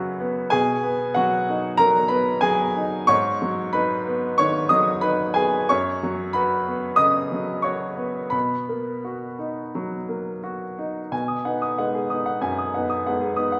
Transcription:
upright piano
Already playing: F#2 C#3 F#3 B3 F#4 B4 B5
0.20 B3
0.50 B2 G#4 G#5
0.83 B3
1.14 F#3 F#4 F#5
1.49 D#4
1.77 F#3 A#4 A#5
2.08 B3 B4 B5
2.41 F#3 G#4 G#5
2.76 D#4
3.07 G#2 C#5 C#6
3.42 F#3
3.73 D#4 B4 B5
4.07 B3
4.38 D#3 C#5 C#6
4.69 F#3 D#5 D#6
5.01 D#4 B4 B5
5.34 B3 G#4 G#5
5.69 F#2 C#5 C#6
6.03 F#3
6.33 F#4 B4 B5
6.67 B3
6.96 C#3 D#5 D#6
7.32 F#3
7.62 F#4 C#5 C#6
7.97 B3
8.30 B2 B3 B5
8.69 A#3
9.04 F#4
9.39 D#4
9.75 F#3
10.08 A#3
10.44 F#4
10.79 D#4
11.11 B2 G#5
11.28 D#6
11.45 B3 D#4 F#5
11.62 D#6
11.78 G#3 B3 D#4 F#5
11.95 G#4
12.10 B3 D#4 D#6
12.26 F#5
12.41 F#2 G#5
12.58 D#6
12.74 B3 D#4 F#5
12.90 D#6
13.06 G#3 B3 D#4 F#5
13.21 G#4
13.36 B3 D#4 D#6
13.52 F#5

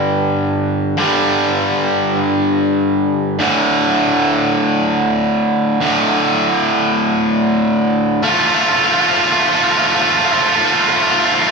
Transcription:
overdriven electric guitar
Already playing: G2 D3 G3
0.97 G2 D3 G3
3.39 D2 A2 D3
5.81 D2 A2 D3
8.23 A3 F4
8.30 A3 F4
8.39 A3 F4
8.47 A3 F4
8.54 A3 F4
8.62 A3 F4
8.69 A3 F4
8.77 A3 F4
8.84 A3 F4
8.92 A3 F4
9.00 A3 F4
9.08 A3 F4
9.15 A3 F4
9.23 A3 F4
9.32 A3 F4
9.39 A3 F4
9.47 A3 F4
9.54 A3 F4
9.62 A3 F4
9.70 A3 F4
9.78 A3 F4
9.86 A3 F4
9.94 A3 F4
10.02 A3 F4
10.09 A3 F4
10.17 A3 F4
10.25 A3 F4
10.32 A3 F4
10.40 A3 F4
10.48 A3 F4
10.55 A3 F4
10.65 A3 F4
10.73 A3 F4
10.80 A3 F4
10.88 A3 F4
10.96 A3 F4
11.03 A3 F4
11.11 A3 F4
11.19 A3 F4
11.26 A3 F4
11.33 A3 F4
11.41 A3 F4
11.48 A3

